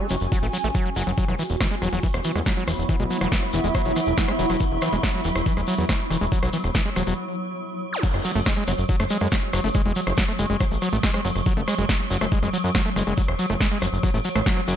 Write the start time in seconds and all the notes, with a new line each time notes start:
Already playing: C#4 F#4 G#5 C#6
0.10 F#1 F#3, closed hi-hat, shekere
0.21 F#1, closed hi-hat, shekere
0.32 F#3, kick, closed hi-hat, shekere
0.43 A1 A3, closed hi-hat, shekere
0.53 F#3, closed hi-hat, shekere
0.64 A1 A3, closed hi-hat, shekere
0.75 F#3, kick, closed hi-hat, shekere
0.86 F#3, closed hi-hat
0.96 F#1 F#3, closed hi-hat, shekere
1.07 F#1 F#3, closed hi-hat, shekere
1.18 F#3 B3, kick, closed hi-hat, shekere
1.28 E1 F#3 E4, cross-stick, closed hi-hat
1.39 E3, open hi-hat, shekere
1.50 E1, closed hi-hat, shekere
1.61 E3, kick, cross-stick, snare, closed hi-hat, shekere
1.71 G#3, closed hi-hat
1.82 E1 F#3, cross-stick, open hi-hat, shekere
1.93 E1 F#3, closed hi-hat, shekere
2.03 E3, kick, closed hi-hat, shekere
2.11 E1 E5, cross-stick, closed hi-hat, shekere
2.24 E3, open hi-hat, shekere
2.35 E2 G#3, cross-stick, closed hi-hat, shekere
2.46 F#3, kick, snare, closed hi-hat, shekere
2.57 F#3, closed hi-hat
2.68 E1 E3, cross-stick, open hi-hat, shekere
2.78 E1, closed hi-hat, shekere
2.89 E3, kick, cross-stick, closed hi-hat, shekere
2.95 B5
3.00 B1 G#3, closed hi-hat
3.11 F#3, open hi-hat, shekere
3.21 E1 F#3, cross-stick, closed hi-hat, shekere
3.32 E3, kick, snare, closed hi-hat, shekere
3.43 cross-stick, closed hi-hat
3.53 E1 E3, open hi-hat, shekere
3.64 E1 G#3, closed hi-hat, shekere
3.75 F#3, kick, cross-stick, closed hi-hat, shekere
3.85 E1 F#3, closed hi-hat, shekere
3.96 E3, cross-stick, open hi-hat, shekere
4.06 E1, closed hi-hat, shekere
4.17 E3, kick, snare, closed hi-hat, shekere
4.28 G#3, cross-stick, closed hi-hat
4.39 E1 F#3, open hi-hat, shekere
4.50 E1 F#3, cross-stick, shekere
4.60 E3, kick, closed hi-hat, shekere
4.71 E1, closed hi-hat
4.82 E3, cross-stick, open hi-hat, shekere
4.93 E1 G#3, closed hi-hat, shekere
5.03 F#3, kick, cross-stick, snare, closed hi-hat, shekere
5.14 F#3, closed hi-hat
5.25 E1 E3, open hi-hat, shekere
5.36 E1, cross-stick, closed hi-hat, shekere
5.46 E3, kick, closed hi-hat, shekere
5.57 E1 G#3, cross-stick, closed hi-hat, shekere
5.67 F#3, open hi-hat, shekere
5.78 E2 F#3, closed hi-hat, shekere
5.89 E3, kick, cross-stick, snare, closed hi-hat, shekere
6.00 closed hi-hat
6.11 E1 E3, cross-stick, open hi-hat, shekere
6.21 E1 G#3, closed hi-hat, shekere
6.32 F#3, kick, closed hi-hat, shekere
6.43 B1 F#3, cross-stick, closed hi-hat, shekere
6.53 E3, open hi-hat, shekere
6.64 E1, cross-stick, closed hi-hat, shekere
6.75 E3, kick, snare, closed hi-hat, shekere
6.86 G#3, closed hi-hat
6.96 E1 F#3, cross-stick, open hi-hat, shekere
7.07 E1 F#3, closed hi-hat, shekere
7.93 zap
8.03 F#3, kick, closed hi-hat, crash, shekere
8.14 F#1, cross-stick, closed hi-hat
8.25 F#3, open hi-hat, shekere
8.36 F#1 A3, closed hi-hat, shekere
8.46 G#3, kick, cross-stick, snare, closed hi-hat, shekere
8.57 G#3, closed hi-hat
8.67 F#1 F#3, cross-stick, open hi-hat, shekere
8.78 F#1, closed hi-hat, shekere
8.89 F#3, kick, closed hi-hat, shekere
9.00 F#1 A3, cross-stick, closed hi-hat, shekere
9.10 G#3, open hi-hat, shekere
9.21 F#2 G#3, cross-stick, closed hi-hat, shekere
9.31 F#3, kick, snare, closed hi-hat, shekere
9.43 closed hi-hat
9.53 F#1 F#3, cross-stick, open hi-hat, shekere
9.64 F#1 A3, closed hi-hat, shekere
9.74 G#3, kick, cross-stick, closed hi-hat, shekere
9.86 E1 G#3, closed hi-hat
9.96 F#3, open hi-hat, shekere
10.07 F#1, cross-stick, closed hi-hat, shekere
10.17 F#3, kick, snare, closed hi-hat, shekere
10.28 A3, cross-stick, closed hi-hat
10.39 F#1 G#3, open hi-hat, shekere
10.50 F#1 G#3, closed hi-hat, shekere
10.60 F#3, kick, cross-stick, closed hi-hat, shekere
10.71 A1, closed hi-hat, shekere
10.82 F#3, cross-stick, open hi-hat, shekere
10.92 A1 A3, closed hi-hat, shekere
11.03 G#3, kick, snare, open hi-hat, shekere
11.14 G#3, cross-stick, closed hi-hat
11.25 F#1 F#3, open hi-hat, shekere
11.35 F#1, cross-stick, closed hi-hat, shekere
11.46 F#3, kick, closed hi-hat, shekere
11.57 F#1 A3, closed hi-hat
11.68 G#3, cross-stick, open hi-hat, shekere
11.78 F#1 G#3, closed hi-hat, shekere
11.89 F#3, kick, cross-stick, snare, closed hi-hat, shekere
12.00 closed hi-hat
12.11 F#1 F#3, open hi-hat, shekere
12.21 F#1 A3, cross-stick, shekere
12.32 G#3, kick, closed hi-hat, shekere
12.43 F#1 G#3, cross-stick, closed hi-hat, shekere
12.53 F#3, open hi-hat, shekere
12.64 F#2, closed hi-hat, shekere
12.75 F#3, kick, cross-stick, snare, closed hi-hat, shekere
12.86 A3, closed hi-hat
12.96 F#1 G#3, cross-stick, open hi-hat, shekere
13.07 F#1 G#3, closed hi-hat, shekere
13.18 F#3, kick, closed hi-hat, shekere
13.28 E1, cross-stick, closed hi-hat
13.39 F#3, open hi-hat, shekere
13.50 F#1 A3, cross-stick, closed hi-hat, shekere
13.60 G#3, kick, snare, closed hi-hat, shekere
13.71 G#3, closed hi-hat
13.82 F#1 F#3, cross-stick, open hi-hat, shekere
13.93 F#1, closed hi-hat, shekere
14.03 F#3, kick, cross-stick, closed hi-hat, shekere
14.14 A1 A3, closed hi-hat, shekere
14.25 F#3, open hi-hat, shekere
14.36 A1 A3, cross-stick, closed hi-hat, shekere
14.46 F#3, kick, snare, open hi-hat, shekere
14.57 F#3, cross-stick, closed hi-hat
14.68 F#1 F#3, open hi-hat, shekere